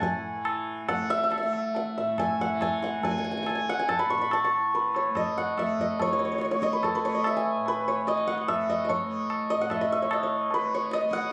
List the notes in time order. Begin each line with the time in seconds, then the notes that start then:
Already playing: A2 E3 A3 E5 F#5
0.02 G#5, tabla tin, tabla ge
0.34 E3
0.45 tabla na
0.88 A3 F#5, tabla na, tabla ge
1.10 E5
1.17 E5
1.23 E5
1.30 E5, tabla na
1.38 A3 E5
1.43 E5
1.53 tabla na
1.75 F#5, tabla tin
1.95 A2 E5
2.18 G#5, tabla na, tabla ge
2.40 F#5, tabla ge
2.48 E3
2.61 G#5, tabla na, tabla ge
2.83 F#5, tabla te
3.00 A3, tabla tin, tabla ge
3.05 G#5
3.11 G#5
3.18 G#5
3.24 G#5
3.31 G#5
3.37 G#5
3.43 G#5, tabla na
3.49 A3 G#5
3.55 G#5
3.69 F#5
3.79 G#5
3.89 A5, tabla na, tabla ge
3.99 B5
4.05 A2
4.10 C#6, tabla te
4.18 B5 C#6
4.31 A5, tabla na
4.44 C#6
4.57 E3
4.74 B4, tabla tin
4.95 C#5, tabla na
5.10 A3
5.15 D#5, tabla na, tabla ge
5.37 F#5, tabla ge
5.58 A3 E5, tabla na, tabla ge
5.79 D#5, tabla ge
6.00 E3 C#5, tabla tin, tabla ge
6.07 C#5
6.13 C#5
6.19 C#5
6.25 C#5
6.32 C#5
6.38 C#5, tabla te
6.45 C#5
6.51 A3 C#5, tabla te
6.62 D#5, tabla ke
6.72 B4, tabla te
6.83 A4, tabla na, tabla ge
6.95 B4
7.04 A3 C#5
7.15 D#5
7.24 E5, tabla na
7.37 G#5
7.54 A2
7.66 B4, tabla tin
7.88 C#5
8.04 E3 D#5, tabla te
8.17 tabla te
8.27 F#5, tabla ke
8.38 tabla te
8.48 E5, tabla na, tabla ge
8.53 A3
8.69 D#5, tabla ge
8.85 D#5
8.89 C#5, tabla tin, tabla ge
9.05 A3
9.30 tabla na
9.50 A2 D#5
9.61 F#5
9.70 E5, tabla na, tabla ge
9.81 D#5
9.92 E5
10.02 E3 C#5
10.11 D#5, tabla na
10.23 C#5
10.51 A3 B4, tabla tin
10.74 C#5
10.91 D#5, tabla te
11.01 A3, tabla te
11.11 F#5, tabla ke
11.22 tabla te